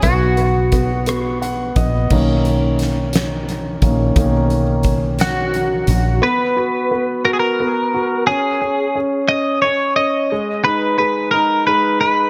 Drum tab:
CC |------|x-----|------|------|
HH |xxxxxx|-xxxxx|xxxxxx|------|
SD |--rr--|--oo--|---o--|------|
BD |o-o--o|o----o|o-o---|------|

CC |------|------|
HH |------|------|
SD |------|------|
BD |------|------|